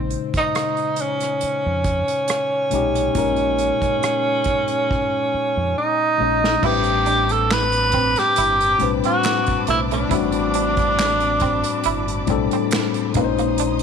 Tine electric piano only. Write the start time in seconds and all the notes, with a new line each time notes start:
Already playing: A#2 C#3 G#3 D#4 C5
2.70 A#2 G#3 C#4 D#4
2.75 G4
3.14 A#2 G#3 C#4 D#4
3.18 A#4
6.18 A#2 G#3 C#4 D#4
6.23 D#5
6.61 A2 G3 C4 D4
6.66 B4
8.79 A2 G3 C4 D4
8.83 B4
10.09 A2 G3 C4 D4
10.14 F#4
12.27 A2 G3 C4 D4
12.31 A4
13.13 A#2 G#3 C#4 D#4
13.18 B4
13.24 C5